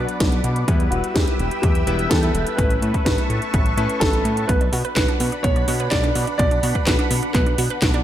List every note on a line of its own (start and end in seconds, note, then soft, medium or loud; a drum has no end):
0.00 0.65 F#3 medium
0.00 0.65 B3 medium
0.00 0.65 D4 medium
0.00 0.39 B4 medium
0.00 0.65 B4 medium
0.00 8.04 B4 medium
0.00 0.64 D5 medium
0.00 0.64 F#5 medium
0.00 0.64 D6 medium
0.09 closed hi-hat soft
0.20 0.41 B1 medium
0.20 kick loud
0.20 snare loud
0.20 closed hi-hat medium
0.32 closed hi-hat soft
0.44 0.64 B2 loud
0.44 closed hi-hat medium
0.56 closed hi-hat soft
0.68 0.88 E2 loud
0.68 1.84 G3 medium
0.68 1.84 B3 medium
0.68 1.84 E4 medium
0.68 1.84 B4 medium
0.68 2.56 E5 medium
0.68 2.56 G5 medium
0.68 2.56 E6 medium
0.68 kick loud
0.68 closed hi-hat medium
0.80 closed hi-hat soft
0.91 1.02 E1 loud
0.91 1.13 F#4 medium
0.91 closed hi-hat medium
1.04 closed hi-hat soft
1.14 1.26 E2 loud
1.14 1.60 G4 medium
1.14 kick loud
1.14 snare loud
1.14 closed hi-hat medium
1.28 closed hi-hat soft
1.39 1.50 E1 loud
1.39 closed hi-hat soft
1.51 closed hi-hat soft
1.62 1.84 E2 medium
1.62 2.12 G4 medium
1.62 kick loud
1.62 closed hi-hat medium
1.75 closed hi-hat soft
1.87 2.07 E1 loud
1.87 2.56 G3 medium
1.87 2.56 B3 medium
1.87 2.56 E4 medium
1.87 2.56 B4 loud
1.87 closed hi-hat medium
1.99 closed hi-hat soft
2.10 2.31 E2 medium
2.10 2.54 A4 medium
2.10 kick loud
2.10 snare loud
2.10 closed hi-hat medium
2.23 closed hi-hat soft
2.34 2.45 E1 loud
2.34 closed hi-hat medium
2.47 closed hi-hat soft
2.57 2.79 A1 medium
2.57 3.75 A3 medium
2.57 3.75 C#4 medium
2.57 3.75 E4 medium
2.57 3.04 B4 loud
2.57 3.75 B4 medium
2.57 4.47 E5 medium
2.57 4.47 A5 medium
2.57 4.47 C#6 medium
2.57 kick loud
2.57 closed hi-hat medium
2.70 closed hi-hat soft
2.82 2.92 A2 loud
2.82 closed hi-hat medium
2.94 kick medium
2.94 closed hi-hat soft
3.05 3.16 A1 medium
3.05 4.04 B4 medium
3.05 kick loud
3.05 snare loud
3.05 closed hi-hat medium
3.18 closed hi-hat soft
3.30 3.40 A2 loud
3.30 closed hi-hat soft
3.42 closed hi-hat soft
3.54 3.74 A1 medium
3.54 kick loud
3.54 closed hi-hat medium
3.66 closed hi-hat soft
3.77 3.88 A2 medium
3.77 4.46 A3 loud
3.77 4.46 C#4 medium
3.77 4.46 E4 medium
3.77 4.46 B4 loud
3.77 closed hi-hat medium
3.89 closed hi-hat soft
4.00 4.22 A1 loud
4.00 4.45 A4 loud
4.00 kick loud
4.00 snare loud
4.00 closed hi-hat medium
4.13 closed hi-hat soft
4.25 4.45 A2 loud
4.25 closed hi-hat medium
4.37 closed hi-hat soft
4.48 4.69 B1 medium
4.48 4.54 B3 loud
4.48 8.04 D4 medium
4.48 4.94 B4 loud
4.48 8.04 F#5 medium
4.48 8.04 B5 medium
4.48 kick loud
4.48 closed hi-hat medium
4.61 4.68 D4 medium
4.61 closed hi-hat soft
4.72 4.83 B2 loud
4.72 4.84 F#4 loud
4.72 open hi-hat loud
4.85 4.96 B4 loud
4.85 closed hi-hat soft
4.95 5.07 B1 loud
4.95 5.08 F#4 loud
4.95 5.45 B4 loud
4.95 kick loud
4.95 snare loud
4.95 clap medium
4.95 closed hi-hat medium
5.08 5.16 D4 loud
5.08 closed hi-hat soft
5.20 5.30 B2 medium
5.20 5.28 B3 medium
5.20 open hi-hat loud
5.32 5.40 D4 medium
5.32 closed hi-hat soft
5.43 5.65 B1 medium
5.43 5.49 B3 loud
5.43 5.88 C#5 loud
5.43 kick loud
5.43 closed hi-hat loud
5.56 5.64 D4 medium
5.56 closed hi-hat soft
5.68 5.88 B2 medium
5.68 5.79 F#4 loud
5.68 open hi-hat loud
5.80 5.91 B4 loud
5.80 closed hi-hat soft
5.91 6.12 B1 medium
5.91 6.03 F#4 loud
5.91 6.36 D5 loud
5.91 kick loud
5.91 snare loud
5.91 clap medium
5.91 closed hi-hat medium
6.04 6.11 D4 loud
6.04 closed hi-hat soft
6.15 6.26 B2 loud
6.15 6.23 B3 medium
6.15 open hi-hat loud
6.27 6.35 D4 medium
6.27 closed hi-hat soft
6.38 6.60 B1 loud
6.38 6.44 B3 loud
6.38 6.88 D5 loud
6.38 kick loud
6.38 closed hi-hat loud
6.51 6.59 D4 medium
6.51 closed hi-hat soft
6.63 6.73 B2 loud
6.63 6.74 F#4 loud
6.63 open hi-hat loud
6.75 6.86 B4 medium
6.75 kick medium
6.75 closed hi-hat soft
6.86 6.97 B1 loud
6.86 6.98 F#4 loud
6.86 7.32 B4 medium
6.86 kick loud
6.86 snare loud
6.86 clap medium
6.86 closed hi-hat medium
6.99 7.06 D4 medium
6.99 closed hi-hat soft
7.11 7.21 B2 medium
7.11 7.18 B3 medium
7.11 open hi-hat loud
7.23 7.30 D4 medium
7.23 closed hi-hat soft
7.33 7.55 B1 medium
7.33 7.39 B3 loud
7.33 7.78 B4 loud
7.33 kick loud
7.33 clap medium
7.33 closed hi-hat medium
7.46 7.54 D4 medium
7.46 closed hi-hat soft
7.58 7.69 B2 medium
7.58 7.70 F#4 loud
7.58 open hi-hat loud
7.70 7.82 B4 loud
7.70 closed hi-hat soft
7.82 8.03 B1 loud
7.82 7.94 F#4 loud
7.82 kick loud
7.82 snare loud
7.82 clap medium
7.82 closed hi-hat medium
7.94 8.02 D4 loud
7.94 closed hi-hat soft